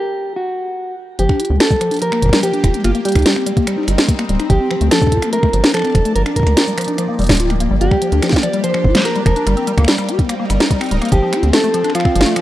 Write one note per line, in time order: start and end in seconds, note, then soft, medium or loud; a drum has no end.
0.00 0.36 G4 loud
0.36 0.94 F#4 medium
1.19 1.27 G1 loud
1.19 2.84 F3 medium
1.19 1.28 F3 loud
1.19 1.60 G4 loud
1.19 closed hi-hat medium
1.29 1.41 D4 medium
1.29 finger snap medium
1.29 kick loud
1.40 1.51 F4 medium
1.40 closed hi-hat medium
1.45 3.51 A#3 medium
1.45 3.51 G4 medium
1.45 closed hi-hat medium
1.50 1.58 D2 loud
1.50 1.60 G3 medium
1.60 1.66 G4 medium
1.60 2.02 A4 loud
1.60 finger snap medium
1.60 snare loud
1.60 closed hi-hat medium
1.71 1.76 G3 medium
1.71 kick loud
1.71 cabasa medium
1.81 1.90 F3 medium
1.81 finger snap medium
1.81 closed hi-hat medium
1.91 2.00 D4 medium
1.91 closed hi-hat medium
1.94 closed hi-hat soft
1.97 closed hi-hat soft
1.99 closed hi-hat soft
2.02 2.11 F3 medium
2.02 2.40 A#4 loud
2.02 closed hi-hat medium
2.12 2.22 A#3 medium
2.12 finger snap medium
2.22 2.31 G1 medium
2.22 2.28 F3 medium
2.22 kick soft
2.22 closed hi-hat medium
2.26 kick medium
2.29 2.42 G3 loud
2.29 finger snap medium
2.29 kick medium
2.29 snare loud
2.29 closed hi-hat medium
2.43 2.52 F3 loud
2.43 2.82 G4 loud
2.43 closed hi-hat medium
2.54 2.65 D4 medium
2.54 closed hi-hat soft
2.64 2.72 F1 medium
2.64 2.76 F4 medium
2.64 finger snap medium
2.64 kick loud
2.64 closed hi-hat medium
2.74 2.84 G3 medium
2.74 closed hi-hat medium
2.84 2.93 G1 loud
2.84 4.50 G3 medium
2.84 2.90 A#3 medium
2.84 2.90 F4 loud
2.84 finger snap medium
2.84 closed hi-hat medium
2.95 3.00 A#3 medium
2.95 closed hi-hat soft
3.05 3.14 G3 medium
3.05 3.84 G4 medium
3.05 closed hi-hat medium
3.09 closed hi-hat medium
3.12 6.82 C4 medium
3.12 finger snap medium
3.12 closed hi-hat medium
3.15 3.24 D2 loud
3.15 3.25 D#4 medium
3.15 kick loud
3.15 closed hi-hat medium
3.19 closed hi-hat soft
3.22 snare loud
3.22 closed hi-hat soft
3.26 3.35 G3 medium
3.26 closed hi-hat medium
3.36 3.46 C4 medium
3.36 4.50 D#4 medium
3.36 finger snap medium
3.46 3.52 G3 medium
3.46 4.50 A#4 medium
3.46 closed hi-hat medium
3.57 3.66 A#3 loud
3.57 4.50 D#5 medium
3.57 kick loud
3.57 closed hi-hat medium
3.67 3.76 G3 loud
3.67 finger snap medium
3.67 closed hi-hat medium
3.78 3.89 D#4 medium
3.88 3.96 G1 loud
3.88 4.00 G4 medium
3.88 finger snap medium
3.88 closed hi-hat medium
3.88 cabasa medium
3.98 4.08 A#3 medium
3.98 snare loud
3.98 closed hi-hat medium
4.09 4.14 A#3 medium
4.09 kick loud
4.09 closed hi-hat medium
4.19 4.24 A#3 medium
4.19 finger snap medium
4.19 closed hi-hat soft
4.29 4.38 D1 medium
4.29 4.38 G3 medium
4.29 closed hi-hat medium
4.40 4.49 D#4 medium
4.40 finger snap medium
4.40 closed hi-hat medium
4.50 4.58 G1 loud
4.50 9.47 F3 medium
4.50 4.59 F3 medium
4.50 4.91 G4 loud
4.50 kick loud
4.50 closed hi-hat medium
4.60 4.70 C4 medium
4.71 4.76 F3 medium
4.71 finger snap medium
4.81 4.89 D2 loud
4.81 4.90 A3 loud
4.81 closed hi-hat medium
4.91 5.01 F3 loud
4.91 5.32 A4 loud
4.91 finger snap medium
4.91 snare loud
4.91 closed hi-hat medium
5.02 6.16 D4 medium
5.02 5.14 D4 medium
5.02 kick loud
5.02 cabasa medium
5.07 kick medium
5.12 5.24 F4 medium
5.12 kick medium
5.12 closed hi-hat medium
5.17 kick medium
5.22 5.32 A3 medium
5.22 9.47 D5 medium
5.22 6.82 A5 medium
5.22 finger snap medium
5.22 closed hi-hat medium
5.33 5.38 A3 medium
5.33 5.74 A#4 loud
5.33 closed hi-hat medium
5.43 5.49 A3 medium
5.43 finger snap medium
5.43 kick loud
5.53 5.62 G1 medium
5.53 5.63 F3 medium
5.53 closed hi-hat medium
5.64 5.73 D4 medium
5.64 snare loud
5.74 5.83 F3 medium
5.74 6.13 A4 loud
5.74 finger snap medium
5.74 closed hi-hat medium
5.77 finger snap medium
5.79 finger snap soft
5.82 5.94 C4 medium
5.82 finger snap soft
5.85 finger snap soft
5.85 closed hi-hat soft
5.90 finger snap soft
5.92 6.03 F1 medium
5.92 6.00 F3 medium
5.92 finger snap soft
5.92 kick loud
5.95 finger snap medium
5.95 closed hi-hat medium
6.05 6.14 A3 loud
6.05 closed hi-hat medium
6.15 6.24 G1 loud
6.15 6.25 F3 loud
6.15 6.21 A#4 loud
6.15 closed hi-hat medium
6.26 10.13 A#3 medium
6.26 6.38 D4 medium
6.26 finger snap medium
6.26 closed hi-hat soft
6.36 6.48 D#4 medium
6.36 7.15 A#4 loud
6.36 kick medium
6.36 closed hi-hat medium
6.40 10.13 G4 medium
6.40 kick medium
6.43 6.55 D2 loud
6.43 6.56 G3 medium
6.43 7.81 D#4 medium
6.43 finger snap soft
6.43 kick medium
6.43 closed hi-hat medium
6.57 6.62 F4 medium
6.57 snare loud
6.57 closed hi-hat medium
6.67 6.73 G3 medium
6.67 cabasa medium
6.78 6.87 F3 medium
6.78 finger snap medium
6.78 closed hi-hat medium
6.81 closed hi-hat medium
6.84 closed hi-hat soft
6.88 6.97 D4 medium
6.88 closed hi-hat medium
6.98 7.07 F3 medium
6.98 finger snap medium
6.98 closed hi-hat medium
7.09 7.18 A#3 medium
7.19 7.31 F1 medium
7.19 7.24 G3 loud
7.19 closed hi-hat soft
7.19 cabasa soft
7.22 closed hi-hat soft
7.22 cabasa soft
7.24 closed hi-hat soft
7.24 cabasa soft
7.27 7.68 D1 loud
7.27 7.39 G3 medium
7.27 finger snap medium
7.27 kick loud
7.27 snare loud
7.27 closed hi-hat soft
7.29 closed hi-hat medium
7.29 cabasa medium
7.32 closed hi-hat medium
7.32 cabasa medium
7.35 closed hi-hat medium
7.35 cabasa medium
7.37 7.52 F4 medium
7.37 closed hi-hat medium
7.40 closed hi-hat medium
7.50 7.55 F3 medium
7.50 finger snap medium
7.50 closed hi-hat soft
7.60 7.69 A#3 medium
7.60 closed hi-hat medium
7.71 7.79 G1 medium
7.71 7.76 G3 medium
7.81 7.89 G1 loud
7.81 7.86 G4 medium
7.81 8.43 G4 loud
7.81 closed hi-hat medium
7.91 7.97 G3 medium
7.91 finger snap medium
7.91 kick loud
8.02 8.11 F3 medium
8.02 closed hi-hat medium
8.12 8.21 D2 loud
8.12 8.21 D4 medium
8.12 closed hi-hat medium
8.22 8.32 F3 medium
8.22 finger snap medium
8.22 snare medium
8.22 closed hi-hat medium
8.29 8.43 A#3 medium
8.29 kick loud
8.29 snare medium
8.29 cabasa medium
8.36 snare loud
8.43 8.49 F3 medium
8.43 9.46 D4 medium
8.43 8.62 D5 loud
8.43 finger snap medium
8.43 closed hi-hat medium
8.53 8.63 G3 loud
8.53 closed hi-hat medium
8.64 8.73 F3 loud
8.64 9.02 C5 loud
8.64 closed hi-hat medium
8.74 8.86 F3 medium
8.74 finger snap medium
8.84 8.93 G1 loud
8.84 8.96 F4 medium
8.84 kick loud
8.95 9.05 G3 medium
8.95 finger snap medium
8.95 snare loud
8.95 closed hi-hat medium
9.05 9.11 G4 medium
9.05 9.25 A#4 loud
9.05 closed hi-hat medium
9.16 9.21 G3 medium
9.16 closed hi-hat soft
9.26 9.34 F1 medium
9.26 9.35 F3 medium
9.26 9.84 A#4 medium
9.26 finger snap medium
9.26 kick loud
9.26 closed hi-hat medium
9.36 9.45 D4 medium
9.36 closed hi-hat soft
9.47 9.55 G1 loud
9.47 11.12 G3 medium
9.47 9.56 G3 medium
9.47 finger snap medium
9.47 closed hi-hat medium
9.57 9.67 C4 medium
9.57 closed hi-hat soft
9.67 9.73 G3 medium
9.67 12.41 C4 medium
9.67 closed hi-hat medium
9.78 9.86 D2 loud
9.78 9.87 A#3 loud
9.78 finger snap medium
9.78 kick loud
9.78 closed hi-hat soft
9.85 9.97 G3 loud
9.85 finger snap medium
9.85 snare loud
9.85 closed hi-hat medium
9.91 finger snap soft
9.98 10.10 G3 medium
9.98 finger snap medium
9.98 cabasa medium
10.09 10.21 G4 medium
10.09 closed hi-hat medium
10.19 10.29 A#3 medium
10.19 11.12 D#4 medium
10.19 11.12 A#4 medium
10.19 11.12 D#5 medium
10.19 kick loud
10.19 closed hi-hat medium
10.29 10.35 A#3 medium
10.29 finger snap medium
10.29 closed hi-hat medium
10.40 10.45 A#3 medium
10.50 10.58 G1 loud
10.50 10.59 G3 medium
10.50 finger snap medium
10.50 closed hi-hat medium
10.50 cabasa medium
10.60 10.69 D#4 medium
10.60 snare loud
10.60 closed hi-hat medium
10.71 10.80 G3 medium
10.71 kick loud
10.71 closed hi-hat medium
10.81 10.91 C4 medium
10.81 finger snap medium
10.81 closed hi-hat soft
10.84 closed hi-hat soft
10.86 closed hi-hat soft
10.89 closed hi-hat soft
10.91 11.00 D1 medium
10.91 10.97 G3 medium
10.91 closed hi-hat medium
10.94 closed hi-hat soft
10.96 closed hi-hat soft
10.99 finger snap medium
10.99 closed hi-hat soft
11.02 11.11 A#3 loud
11.02 closed hi-hat soft
11.05 closed hi-hat soft
11.09 closed hi-hat soft
11.12 11.20 G1 loud
11.12 11.21 F3 loud
11.12 12.41 F3 medium
11.12 11.51 G4 loud
11.12 kick loud
11.12 closed hi-hat medium
11.22 11.34 F3 medium
11.33 11.45 F4 medium
11.33 finger snap medium
11.33 closed hi-hat medium
11.43 11.51 D2 loud
11.43 11.53 A3 medium
11.43 closed hi-hat medium
11.53 11.59 A3 medium
11.53 11.92 A4 loud
11.53 finger snap medium
11.53 snare loud
11.53 closed hi-hat medium
11.64 11.69 A3 medium
11.64 cabasa medium
11.71 11.83 F3 medium
11.71 12.41 D4 medium
11.71 closed hi-hat medium
11.84 11.94 D4 medium
11.84 12.41 A4 medium
11.84 12.41 D5 medium
11.84 finger snap soft
11.84 closed hi-hat medium
11.90 finger snap soft
11.95 12.04 F3 medium
11.95 12.41 F4 loud
11.95 finger snap medium
11.95 closed hi-hat medium
12.00 finger snap medium
12.05 12.15 C4 medium
12.05 finger snap medium
12.05 kick loud
12.15 12.24 G1 loud
12.15 12.21 F3 medium
12.15 closed hi-hat medium
12.21 snare loud
12.26 12.35 A3 loud
12.26 closed hi-hat medium
12.36 12.41 F3 loud
12.36 finger snap medium
12.36 closed hi-hat medium